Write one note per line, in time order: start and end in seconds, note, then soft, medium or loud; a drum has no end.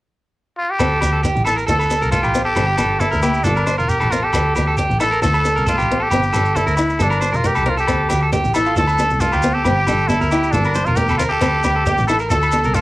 0.58 0.72 F4 medium
0.71 1.25 G4 medium
0.79 0.99 D2 medium
0.79 0.99 C4 medium
0.79 1.01 A4 medium
0.79 low agogo medium
0.79 shekere medium
1.01 1.32 D2 medium
1.01 1.21 D4 medium
1.01 1.12 G4 medium
1.01 low agogo medium
1.01 shekere medium
1.13 1.23 A4 medium
1.23 1.44 G4 medium
1.23 muted steel-string acoustic guitar stroke medium
1.23 shekere medium
1.36 1.55 A1 medium
1.36 shekere soft
1.45 1.66 E4 medium
1.45 1.56 A4 medium
1.45 1.57 A4 medium
1.45 low agogo medium
1.45 shekere medium
1.56 1.66 A#4 medium
1.56 shekere soft
1.67 1.99 D2 medium
1.67 1.88 F4 medium
1.67 1.78 A4 medium
1.67 2.10 A4 medium
1.67 shekere medium
1.79 2.01 A4 medium
1.79 low agogo medium
1.79 shekere soft
1.90 2.10 D4 medium
1.90 shekere medium
2.02 2.22 C2 medium
2.02 2.11 A#4 medium
2.02 shekere soft
2.12 2.31 A3 medium
2.12 2.44 F4 medium
2.12 2.23 A4 medium
2.12 shekere medium
2.23 2.53 A1 medium
2.23 2.45 G4 medium
2.23 low agogo medium
2.23 shekere soft
2.35 2.54 C4 medium
2.35 shekere medium
2.45 3.02 G4 medium
2.45 2.54 A4 medium
2.55 2.76 G1 medium
2.55 2.76 C4 medium
2.55 2.66 A4 medium
2.55 low agogo medium
2.55 shekere medium
2.67 2.77 G4 medium
2.77 3.09 G1 medium
2.77 2.98 D4 medium
2.77 2.99 A4 medium
2.77 low agogo medium
2.77 shekere medium
3.00 3.20 D4 medium
3.00 3.45 E4 medium
3.00 3.11 A4 medium
3.00 shekere medium
3.11 3.33 D2 medium
3.11 3.22 A#4 medium
3.11 shekere soft
3.23 3.42 A#3 medium
3.23 3.44 G4 medium
3.23 low agogo medium
3.23 shekere medium
3.34 shekere soft
3.44 3.75 G1 medium
3.44 3.77 D4 medium
3.44 3.65 F4 medium
3.44 3.56 A4 medium
3.44 shekere medium
3.56 3.66 A#4 medium
3.56 low agogo medium
3.56 shekere soft
3.67 3.86 D4 medium
3.67 3.78 C5 medium
3.67 shekere medium
3.78 3.99 E1 medium
3.78 3.91 F4 medium
3.78 4.00 A#4 medium
3.78 shekere soft
3.89 4.13 G4 medium
3.89 shekere medium
4.00 4.30 A1 medium
4.00 4.10 A4 medium
4.00 low agogo medium
4.00 shekere soft
4.11 4.31 C4 medium
4.11 4.26 F4 medium
4.11 4.22 A#4 medium
4.11 shekere medium
4.22 4.79 G4 medium
4.22 4.32 A4 medium
4.33 4.54 D2 medium
4.33 4.54 A4 medium
4.33 muted steel-string acoustic guitar stroke medium
4.33 low agogo medium
4.33 shekere medium
4.55 4.86 D2 medium
4.55 4.76 D4 medium
4.55 4.67 G4 medium
4.55 low agogo medium
4.55 shekere medium
4.67 4.77 A4 medium
4.77 4.98 D4 medium
4.77 4.99 G4 medium
4.77 shekere medium
4.90 5.10 A1 medium
4.90 shekere soft
5.00 5.20 E4 medium
5.00 5.11 A4 medium
5.00 5.22 A4 medium
5.00 low agogo medium
5.00 shekere medium
5.11 5.22 A#4 medium
5.11 shekere soft
5.22 5.52 D2 medium
5.22 5.42 F4 medium
5.22 5.33 A4 medium
5.22 5.64 A4 loud
5.22 shekere medium
5.34 5.55 A4 medium
5.34 low agogo medium
5.34 shekere soft
5.45 5.64 D4 medium
5.45 shekere medium
5.56 5.76 C2 medium
5.56 5.66 A#4 medium
5.56 shekere soft
5.66 5.87 A3 medium
5.66 6.04 F4 medium
5.66 5.78 A4 medium
5.66 shekere medium
5.78 6.08 A1 medium
5.78 5.99 G4 medium
5.78 low agogo medium
5.78 shekere soft
5.91 6.09 C4 medium
6.00 6.58 G4 medium
6.00 6.10 A4 medium
6.10 6.31 G1 medium
6.10 6.31 C4 medium
6.10 6.22 G4 medium
6.10 low agogo medium
6.10 shekere medium
6.23 shekere soft
6.33 6.63 G1 medium
6.33 6.54 D4 medium
6.33 6.54 A4 medium
6.33 low agogo medium
6.33 shekere medium
6.45 shekere soft
6.55 6.75 D4 medium
6.55 7.04 E4 medium
6.55 6.66 A4 medium
6.55 shekere medium
6.67 6.87 D2 medium
6.67 6.76 A#4 medium
6.67 shekere soft
6.77 6.97 E4 medium
6.77 muted clean electric guitar stroke medium
6.77 low agogo medium
6.77 shekere medium
6.90 shekere soft
6.99 7.29 G1 medium
6.99 7.37 D4 medium
6.99 7.19 F4 medium
6.99 7.10 A4 medium
6.99 shekere medium
7.10 7.21 A#4 medium
7.10 low agogo medium
7.10 shekere soft
7.21 7.41 D4 medium
7.21 7.32 C5 medium
7.21 shekere medium
7.33 7.53 E1 medium
7.33 7.48 F4 medium
7.33 7.54 A#4 medium
7.33 shekere soft
7.44 7.63 A3 medium
7.44 7.71 G4 medium
7.44 shekere medium
7.55 7.84 C2 medium
7.55 7.65 A4 medium
7.55 low agogo medium
7.55 shekere soft
7.66 7.85 C4 medium
7.66 7.79 F4 medium
7.66 7.77 A#4 medium
7.77 8.30 G4 medium
7.77 7.86 A4 medium
7.77 shekere soft
7.87 8.08 D2 medium
7.87 8.07 C4 medium
7.87 8.09 A4 medium
7.87 muted conga soft
7.87 low agogo medium
7.87 shekere medium
8.09 8.41 D2 medium
8.09 8.21 G4 medium
8.09 muted steel-string acoustic guitar stroke medium
8.09 low agogo medium
8.09 shekere medium
8.22 8.32 A4 medium
8.33 8.51 D4 medium
8.33 8.54 G4 medium
8.33 high conga medium
8.33 shekere medium
8.44 8.64 A1 medium
8.44 shekere soft
8.54 8.74 E4 medium
8.54 8.66 A4 medium
8.54 8.75 A4 loud
8.54 low agogo medium
8.54 shekere medium
8.66 8.76 F4 medium
8.66 shekere soft
8.76 9.07 D2 medium
8.76 8.96 F4 medium
8.76 8.87 A4 medium
8.76 9.22 A4 medium
8.76 shekere medium
8.87 9.09 A4 medium
8.87 low agogo medium
8.87 shekere soft
8.98 9.18 D4 medium
8.98 high conga medium
8.98 shekere medium
9.10 9.30 C2 medium
9.10 shekere soft
9.20 9.40 A3 medium
9.20 9.55 F4 medium
9.20 9.32 A4 medium
9.20 shekere medium
9.32 9.62 D2 medium
9.32 9.54 G4 medium
9.32 low agogo medium
9.32 shekere soft
9.42 9.63 C4 medium
9.42 muted conga soft
9.42 high conga medium
9.42 shekere medium
9.54 10.09 G4 medium
9.54 9.64 A4 medium
9.65 9.85 G1 medium
9.65 9.85 C4 medium
9.65 9.76 G4 medium
9.65 low agogo medium
9.65 shekere medium
9.77 9.87 G4 medium
9.87 10.17 G1 medium
9.87 10.07 D4 medium
9.87 10.08 A4 medium
9.87 low agogo medium
9.87 shekere medium
10.08 10.29 D4 medium
10.08 10.53 E4 medium
10.08 10.21 A4 medium
10.08 high conga medium
10.08 shekere medium
10.21 10.41 D2 medium
10.21 10.31 A#4 medium
10.21 shekere soft
10.31 10.51 E4 medium
10.31 10.53 G4 medium
10.31 low agogo medium
10.31 shekere medium
10.43 shekere soft
10.51 10.83 G1 medium
10.51 10.87 D4 medium
10.51 10.73 F4 medium
10.51 10.65 A4 medium
10.51 muted conga soft
10.51 high conga medium
10.51 shekere medium
10.64 10.75 A#4 medium
10.64 low agogo medium
10.64 shekere soft
10.75 10.87 C5 medium
10.75 muted steel-string acoustic guitar stroke medium
10.75 muted conga soft
10.75 low conga medium
10.75 shekere medium
10.85 11.07 E1 medium
10.85 10.98 F4 medium
10.85 11.09 A#4 medium
10.85 shekere soft
10.96 11.16 A3 medium
10.96 11.17 G4 medium
10.96 high conga medium
10.96 shekere medium
11.09 11.38 D2 medium
11.09 11.19 A4 medium
11.09 low agogo medium
11.09 shekere soft
11.18 11.39 C4 medium
11.18 11.24 F4 medium
11.18 11.31 A#4 medium
11.18 muted conga soft
11.18 shekere medium
11.29 12.03 G4 medium
11.29 11.41 A4 medium
11.41 11.61 D2 medium
11.41 11.61 C4 medium
11.41 11.64 A4 medium
11.41 muted conga soft
11.41 low agogo medium
11.41 shekere medium
11.64 11.94 D2 medium
11.64 11.83 D4 medium
11.64 11.76 G4 medium
11.64 low agogo medium
11.64 shekere medium
11.76 11.86 A4 medium
11.86 12.06 D4 medium
11.86 12.07 G4 medium
11.86 high conga medium
11.86 shekere medium
11.98 12.18 A1 medium
11.98 shekere soft
12.07 12.28 E4 medium
12.07 12.18 A4 medium
12.07 12.20 A4 medium
12.07 low agogo medium
12.07 shekere medium
12.19 12.30 A#4 medium
12.19 shekere soft
12.30 12.61 D2 medium
12.30 12.50 F4 medium
12.30 12.76 A4 medium
12.30 12.41 A4 medium
12.30 muted conga soft
12.30 shekere medium
12.42 12.64 A4 medium
12.42 low agogo medium
12.42 shekere soft
12.52 12.72 D4 medium
12.52 muted conga soft
12.52 high conga medium
12.52 shekere medium
12.64 12.81 C2 medium
12.64 12.75 A#4 medium
12.64 shekere soft
12.74 12.81 A3 medium
12.74 12.81 F4 medium
12.74 12.81 A4 medium
12.74 shekere medium